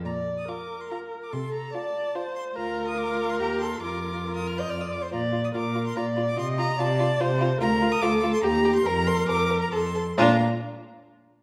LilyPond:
<<
  \new Staff \with { instrumentName = "Violin" } { \time 3/4 \key bes \major \tempo 4 = 142 bes''8. ees'''16 d'''8. c'''16 bes''8. d'''16 | c'''8 bes''8 a''4. c'''8 | bes''8. ees'''16 d'''8. c'''16 bes''8 c'''8 | d'''4~ d'''16 ees'''16 f'''16 g'''16 f'''16 ees'''16 d'''16 c'''16 |
bes''8. ees'''16 d'''8. c'''16 bes''8. d'''16 | c'''8 bes''8 a''4. r8 | bes''8. ees'''16 d'''8. c'''16 bes''8. c'''16 | bes''8 c'''8 d'''8. bes''16 c'''4 |
bes''8 r2 r8 | }
  \new Staff \with { instrumentName = "Viola" } { \time 3/4 \key bes \major d''4 bes'2 | a'4 d''4 c''4 | bes'2. | f'2~ f'8 r8 |
d''4 bes'4 d''4 | ees''4 d''4 c''4 | bes'4 a'4 g'4 | bes'2 a'8 r8 |
d'8 r2 r8 | }
  \new Staff \with { instrumentName = "Violin" } { \time 3/4 \key bes \major r4 f'4 f'4 | r4 f'4 f'4 | f'4 f'4 g'8 a'8 | bes'4 bes'8. ees''16 d''8. c''16 |
f'8 f'8 f'8 f'8 f'8 f'8 | f'8 f'8 f'8 f'8 f'8 f'8 | f'8 f'8 f'8 f'8 g'8 g'8 | bes'8 bes'8 bes'8 bes'8 a'8 a'8 |
f'8 r2 r8 | }
  \new Staff \with { instrumentName = "Cello" } { \clef bass \time 3/4 \key bes \major bes,4 r2 | c4 r2 | d,2 ees,4 | f,2 f,8 r8 |
bes,4 bes,4 bes,4 | c4 c4 c4 | d,4 d,4 ees,4 | f,4 f,4 f,4 |
bes,8 r2 r8 | }
>>